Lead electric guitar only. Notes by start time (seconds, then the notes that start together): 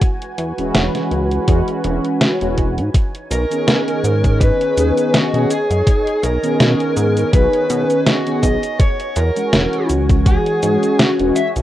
3.31 A#4
4.41 B4
5.14 F#4
5.50 G#4
6.24 A#4
7.33 B4
8.06 F#4
8.43 D#5
8.80 C#5
9.17 A#4
10.26 G#4
10.99 F#4
11.36 E5